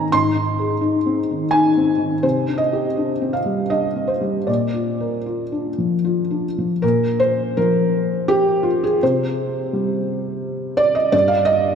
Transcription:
felt piano
Already playing: G#2 D#3 C4 D#4 G#4 D#5 G5 G#5 A#5
0.12 G#2 C6
0.35 D#4
0.59 G#4
0.81 D#4
1.06 C4
1.31 D#3
1.51 D#4 G#5
1.77 C4
1.98 D#3
2.23 C3 C5
2.48 D4
2.58 D#5
2.73 G4
2.97 D4
3.21 C4
3.33 F5
3.46 G3
3.70 D4 D#5
3.96 C4
4.07 C5
4.21 G3
4.47 A#2 D5
4.74 F4
5.00 A#4
5.26 F4
5.52 D4
5.78 F3
6.04 F4
6.30 D4
6.58 F3
6.82 A#2 A#4
7.20 C5
7.57 F3 A#4
8.28 G4
8.63 F4
8.84 G#4
9.03 C3 C5
9.73 G3
10.77 D5
10.95 D#5
11.12 G2 D5
11.28 F5
11.45 D#5

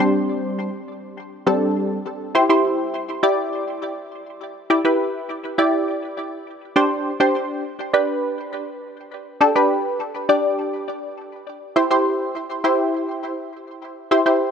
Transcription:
synth stab
0.00 G3 C4 D4 C5
1.46 G3 C4 D4 A4
2.35 E4 G4 C5
2.49 E4 G4 C5
3.23 E4 G4 D5
4.70 E4 G4 D5
4.85 E4 G4 B4
5.58 E4 G4 D5
6.76 D4 G4 C5
7.20 D4 G4 C5
7.93 D4 G4 B4
9.41 D4 G4 A4
9.55 D4 G4 B4
10.29 D4 G4 D5
11.76 E4 G4 C5
11.91 E4 G4 C5
12.64 E4 G4 C5
14.11 E4 G4 C5
14.26 E4 G4 C5

